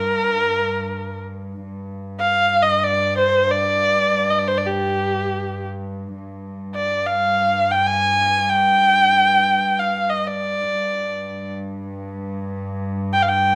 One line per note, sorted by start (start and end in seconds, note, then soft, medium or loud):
0.00 1.59 G2 medium
0.00 1.22 A#4 medium
1.61 6.14 G2 medium
2.20 2.64 F5 medium
2.62 2.85 D#5 medium
2.83 3.17 D5 medium
3.17 3.52 C5 medium
3.51 4.32 D5 medium
4.30 4.40 D#5 medium
4.39 4.49 D5 medium
4.48 4.59 C5 medium
4.58 4.68 D5 medium
4.66 5.67 G4 medium
6.16 10.67 G2 medium
6.75 7.08 D5 medium
7.07 7.73 F5 medium
7.71 7.88 G5 medium
7.87 8.51 G#5 medium
8.50 9.81 G5 medium
9.80 10.11 F5 medium
10.10 10.28 D#5 medium
10.27 11.55 D5 medium
10.68 13.55 G2 medium
13.13 13.24 G5 medium
13.22 13.30 F5 medium
13.28 13.55 G5 medium